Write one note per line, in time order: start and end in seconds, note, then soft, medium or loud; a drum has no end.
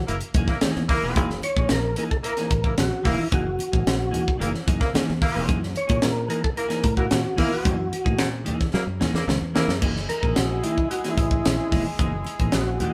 0.07 0.20 F#1 medium
0.07 0.16 A#3 medium
0.07 0.16 E4 medium
0.07 0.16 A#4 medium
0.07 closed hi-hat medium
0.21 muted clean electric guitar stroke soft
0.21 closed hi-hat medium
0.34 0.47 F#2 loud
0.34 0.52 E3 medium
0.34 0.49 A#3 medium
0.34 0.49 D#4 medium
0.34 0.49 G#4 medium
0.34 kick loud
0.34 closed hi-hat medium
0.34 muted conga soft
0.34 low conga medium
0.47 0.57 A#3 medium
0.47 0.57 E4 medium
0.47 0.57 A#4 medium
0.47 muted clean electric guitar stroke soft
0.47 kick medium
0.47 snare soft
0.61 0.82 E3 medium
0.61 0.82 A#3 medium
0.61 0.83 D#4 medium
0.61 0.83 G#4 medium
0.61 muted fingered electric bass stroke medium
0.61 snare loud
0.61 closed hi-hat loud
0.61 high conga medium
0.75 0.88 E2 medium
0.75 snare soft
0.88 1.23 A#3 loud
0.88 1.23 E4 medium
0.88 1.23 A#4 loud
0.88 muted clean electric guitar stroke medium
0.88 kick medium
0.88 open hi-hat medium
0.88 high conga medium
1.03 1.16 E1 medium
1.03 1.15 E3 soft
1.03 1.16 A#3 medium
1.03 1.16 D#4 medium
1.03 1.16 G#4 medium
1.16 1.40 F#1 loud
1.16 1.33 E3 medium
1.16 1.30 A#3 medium
1.16 1.30 D#4 medium
1.16 1.29 G#4 loud
1.16 kick loud
1.16 closed hi-hat medium
1.16 muted conga soft
1.30 muted clean electric guitar stroke medium
1.30 snare soft
1.42 1.69 C#5 loud
1.42 muted clean electric guitar stroke soft
1.42 closed hi-hat medium
1.42 muted conga soft
1.57 1.69 A#1 medium
1.57 1.69 E3 soft
1.57 1.70 A#3 medium
1.57 1.70 D#4 medium
1.57 1.70 G#4 medium
1.57 kick loud
1.69 1.94 A#1 medium
1.69 1.96 A#4 loud
1.69 muted clean electric guitar stroke soft
1.69 snare loud
1.69 closed hi-hat medium
1.69 high conga medium
1.85 muted clean electric guitar stroke soft
1.96 2.14 E3 medium
1.96 2.11 A#3 medium
1.96 2.10 D#4 medium
1.96 2.10 G#4 medium
1.96 2.04 A#4 medium
1.96 closed hi-hat medium
2.11 2.17 A4 medium
2.11 muted clean electric guitar stroke medium
2.11 kick medium
2.23 2.32 A#3 medium
2.23 2.32 E4 medium
2.23 2.33 A#4 medium
2.23 2.75 A#4 medium
2.23 muted clean electric guitar stroke soft
2.23 closed hi-hat medium
2.37 2.49 E3 medium
2.37 2.50 A#3 medium
2.37 2.51 D#4 medium
2.37 2.51 G#4 medium
2.37 snare soft
2.37 closed hi-hat medium
2.51 2.75 A1 medium
2.51 muted clean electric guitar stroke soft
2.51 kick loud
2.51 closed hi-hat medium
2.51 muted conga medium
2.64 2.74 A#3 medium
2.64 2.73 E4 medium
2.64 2.73 A#4 medium
2.64 muted clean electric guitar stroke soft
2.64 kick medium
2.77 2.91 A#1 medium
2.77 3.07 F#4 medium
2.77 muted clean electric guitar stroke soft
2.77 snare loud
2.77 closed hi-hat loud
2.77 high conga medium
2.91 muted clean electric guitar stroke soft
3.03 3.18 E1 medium
3.03 3.24 E3 medium
3.03 3.18 A#3 loud
3.03 3.23 A#3 loud
3.03 3.17 D#4 medium
3.03 3.23 E4 medium
3.03 3.17 G#4 medium
3.03 3.22 A#4 loud
3.03 kick medium
3.03 snare soft
3.03 open hi-hat medium
3.03 high conga medium
3.09 3.21 E4 medium
3.18 muted clean electric guitar stroke soft
3.23 3.28 E4 medium
3.31 3.56 F#1 loud
3.31 3.48 E3 medium
3.31 3.45 A#3 medium
3.31 3.45 D#4 loud
3.31 4.37 F#4 medium
3.31 3.44 G#4 loud
3.31 kick loud
3.31 closed hi-hat medium
3.45 muted clean electric guitar stroke soft
3.58 muted clean electric guitar stroke soft
3.58 closed hi-hat medium
3.58 muted conga medium
3.72 3.85 A1 medium
3.72 3.83 E3 soft
3.72 3.84 A#3 soft
3.72 3.84 D#4 soft
3.72 3.85 G#4 medium
3.72 kick loud
3.85 4.11 A#1 medium
3.85 muted clean electric guitar stroke soft
3.85 snare loud
3.85 closed hi-hat medium
3.85 high conga medium
3.99 muted clean electric guitar stroke soft
4.11 4.29 E3 loud
4.11 4.24 A#3 medium
4.11 4.23 D#4 medium
4.11 4.23 G#4 loud
4.11 closed hi-hat medium
4.11 low conga medium
4.24 muted clean electric guitar stroke soft
4.24 kick medium
4.38 4.53 F#1 medium
4.38 4.59 E3 medium
4.38 4.53 A#3 medium
4.38 4.49 A#3 medium
4.38 4.52 D#4 medium
4.38 4.50 E4 medium
4.38 4.51 G#4 medium
4.38 4.50 A#4 medium
4.38 closed hi-hat medium
4.52 muted clean electric guitar stroke medium
4.52 snare soft
4.66 4.80 F#2 loud
4.66 4.80 E3 medium
4.66 4.80 A#3 medium
4.66 4.81 D#4 medium
4.66 4.80 G#4 medium
4.66 kick loud
4.66 closed hi-hat medium
4.66 muted conga medium
4.81 4.90 A#3 medium
4.81 4.90 E4 medium
4.81 4.90 A#4 medium
4.81 muted clean electric guitar stroke medium
4.81 kick medium
4.81 snare soft
4.93 5.11 E3 medium
4.93 5.11 A#3 medium
4.93 5.11 D#4 medium
4.93 5.12 G#4 loud
4.93 muted fingered electric bass stroke soft
4.93 snare loud
4.93 closed hi-hat medium
4.93 high conga medium
5.08 5.21 E2 medium
5.08 snare soft
5.21 5.45 A#3 loud
5.21 5.45 E4 medium
5.21 5.45 A#4 loud
5.21 muted clean electric guitar stroke soft
5.21 kick loud
5.21 open hi-hat medium
5.21 high conga medium
5.34 5.48 E1 medium
5.34 5.46 E3 medium
5.34 5.46 A#3 medium
5.34 5.46 D#4 medium
5.34 5.47 G#4 medium
5.47 5.73 F#2 loud
5.47 5.65 E3 medium
5.47 5.60 A#3 medium
5.47 5.60 D#4 medium
5.47 5.59 G#4 loud
5.47 kick loud
5.47 closed hi-hat medium
5.47 muted conga soft
5.60 muted clean electric guitar stroke soft
5.60 snare soft
5.75 6.04 C#5 loud
5.75 muted clean electric guitar stroke soft
5.75 closed hi-hat medium
5.75 muted conga soft
5.87 6.02 A#2 medium
5.87 6.00 E3 soft
5.87 6.01 A#3 medium
5.87 6.01 D#4 medium
5.87 6.01 G#4 medium
5.87 kick loud
5.87 closed hi-hat medium
6.01 6.27 A#2 medium
6.01 6.28 A#4 loud
6.01 muted clean electric guitar stroke soft
6.01 snare loud
6.01 closed hi-hat loud
6.01 high conga medium
6.16 muted clean electric guitar stroke soft
6.28 6.46 E3 medium
6.28 6.42 A#3 medium
6.28 6.41 D#4 medium
6.28 6.41 G#4 medium
6.28 6.43 A#4 loud
6.28 closed hi-hat medium
6.42 6.50 A4 medium
6.42 muted clean electric guitar stroke medium
6.42 kick medium
6.55 6.66 A#3 medium
6.55 6.66 E4 medium
6.55 6.66 A#4 medium
6.55 6.95 A#4 loud
6.55 muted clean electric guitar stroke soft
6.55 closed hi-hat medium
6.68 6.82 E3 medium
6.68 6.83 A#3 medium
6.68 6.83 D#4 medium
6.68 6.84 G#4 medium
6.68 snare soft
6.68 closed hi-hat medium
6.83 7.08 A2 medium
6.83 muted clean electric guitar stroke soft
6.83 kick loud
6.83 closed hi-hat medium
6.83 muted conga medium
6.97 7.06 A#3 medium
6.97 7.06 E4 medium
6.97 7.39 F#4 medium
6.97 7.06 A#4 medium
6.97 muted clean electric guitar stroke soft
6.97 kick medium
7.10 7.24 A#2 loud
7.10 muted clean electric guitar stroke soft
7.10 snare loud
7.10 closed hi-hat medium
7.10 high conga medium
7.23 muted clean electric guitar stroke medium
7.36 7.50 E2 medium
7.36 7.54 E3 medium
7.36 7.50 A#3 medium
7.36 7.73 A#3 loud
7.36 7.50 D#4 medium
7.36 7.52 E4 medium
7.36 7.73 E4 loud
7.36 7.49 G#4 loud
7.36 7.73 A#4 loud
7.36 kick medium
7.36 snare soft
7.36 open hi-hat medium
7.36 high conga medium
7.50 8.30 F#4 medium
7.50 muted clean electric guitar stroke medium
7.63 7.90 F#2 loud
7.63 7.85 E3 medium
7.63 7.77 A#3 medium
7.63 7.77 D#4 medium
7.63 7.76 G#4 medium
7.63 kick loud
7.63 closed hi-hat medium
7.78 muted clean electric guitar stroke soft
7.91 muted clean electric guitar stroke soft
7.91 closed hi-hat medium
7.91 muted conga soft
8.04 8.19 A2 medium
8.04 8.17 E3 soft
8.04 8.18 A#3 medium
8.04 8.18 D#4 medium
8.04 8.18 G#4 medium
8.04 kick loud
8.19 8.43 A#2 loud
8.19 snare loud
8.19 closed hi-hat medium
8.19 high conga medium
8.31 muted clean electric guitar stroke soft
8.44 8.66 E3 medium
8.44 8.59 A#3 medium
8.44 8.58 D#4 medium
8.44 8.58 G#4 medium
8.44 closed hi-hat medium
8.44 low conga medium
8.59 muted clean electric guitar stroke medium
8.59 kick medium
8.59 snare soft
8.73 8.86 F#3 loud
8.73 8.82 A#3 medium
8.73 8.83 E4 medium
8.73 8.82 A#4 medium
8.73 snare medium
8.86 8.99 F#2 medium
8.86 muted clean electric guitar stroke soft
9.00 9.17 E3 medium
9.00 9.14 A#3 medium
9.00 9.13 D#4 medium
9.00 9.13 G#4 medium
9.00 snare medium
9.00 muted conga medium
9.00 low conga medium
9.14 9.26 E2 medium
9.14 9.24 A#3 medium
9.14 9.23 E4 medium
9.14 9.24 A#4 medium
9.14 muted clean electric guitar stroke soft
9.14 snare medium
9.28 9.40 C#2 loud
9.28 snare medium
9.28 high conga medium
9.41 9.53 E2 medium
9.41 muted clean electric guitar stroke soft
9.54 9.71 E3 medium
9.54 9.68 A#3 medium
9.54 9.73 A#3 medium
9.54 9.67 D#4 medium
9.54 9.73 E4 medium
9.54 9.66 G#4 medium
9.54 9.73 A#4 loud
9.54 snare loud
9.54 high conga medium
9.68 9.80 F#2 medium
9.68 muted clean electric guitar stroke soft
9.68 snare medium
9.81 10.06 F#1 medium
9.81 9.98 E3 medium
9.81 12.93 G#3 medium
9.81 9.96 A#3 medium
9.81 9.95 D#4 medium
9.81 12.93 E4 medium
9.81 9.95 G#4 medium
9.81 12.93 G#4 medium
9.81 kick loud
9.81 crash medium
9.81 muted conga soft
9.96 muted clean electric guitar stroke soft
9.96 snare soft
10.09 10.37 A#4 loud
10.09 muted clean electric guitar stroke soft
10.09 closed hi-hat medium
10.09 muted conga soft
10.22 10.35 A#1 medium
10.22 10.34 E3 medium
10.22 10.35 A#3 medium
10.22 10.35 D#4 medium
10.22 10.36 G#4 medium
10.22 kick medium
10.35 10.61 A#1 medium
10.35 10.64 F#4 medium
10.35 muted clean electric guitar stroke soft
10.35 snare loud
10.35 closed hi-hat loud
10.35 high conga medium
10.50 muted clean electric guitar stroke soft
10.63 10.83 E3 medium
10.63 10.77 A#3 medium
10.63 10.76 D#4 medium
10.63 10.88 E4 medium
10.63 10.76 G#4 medium
10.63 closed hi-hat medium
10.77 muted clean electric guitar stroke soft
10.77 kick medium
10.91 11.09 F#4 medium
10.91 muted clean electric guitar stroke soft
10.91 closed hi-hat medium
11.04 11.17 E3 medium
11.04 11.17 A#3 medium
11.04 11.18 D#4 medium
11.04 11.18 G#4 medium
11.04 snare soft
11.04 closed hi-hat medium
11.10 11.87 E4 medium
11.17 11.41 A1 medium
11.17 muted clean electric guitar stroke soft
11.17 kick loud
11.17 closed hi-hat medium
11.17 muted conga medium
11.31 muted clean electric guitar stroke soft
11.31 kick medium
11.45 11.58 A#1 medium
11.45 muted clean electric guitar stroke soft
11.45 snare loud
11.45 closed hi-hat loud
11.45 high conga medium
11.59 muted clean electric guitar stroke medium
11.71 11.84 E1 medium
11.71 11.88 E3 medium
11.71 11.86 A#3 medium
11.71 11.85 D#4 loud
11.71 11.85 G#4 medium
11.71 kick medium
11.71 snare soft
11.71 open hi-hat medium
11.71 high conga medium
11.86 muted clean electric guitar stroke soft
11.99 12.23 F#1 loud
11.99 12.16 E3 medium
11.99 12.13 A#3 medium
11.99 12.13 D#4 medium
11.99 12.12 G#4 medium
11.99 kick loud
11.99 closed hi-hat medium
11.99 muted conga soft
12.14 muted clean electric guitar stroke soft
12.24 muted clean electric guitar stroke soft
12.24 closed hi-hat medium
12.24 muted conga medium
12.39 12.52 A1 medium
12.39 12.53 E3 medium
12.39 12.53 A#3 medium
12.39 12.53 D#4 medium
12.39 12.53 G#4 medium
12.39 kick medium
12.39 closed hi-hat soft
12.52 12.77 A#1 medium
12.52 12.80 F#4 medium
12.52 muted clean electric guitar stroke soft
12.52 snare loud
12.52 closed hi-hat medium
12.52 high conga medium
12.68 muted clean electric guitar stroke soft
12.80 12.93 E3 medium
12.80 12.93 A#3 medium
12.80 12.93 D#4 medium
12.80 12.93 F#4 medium
12.80 12.93 G#4 medium
12.80 closed hi-hat medium
12.80 low conga medium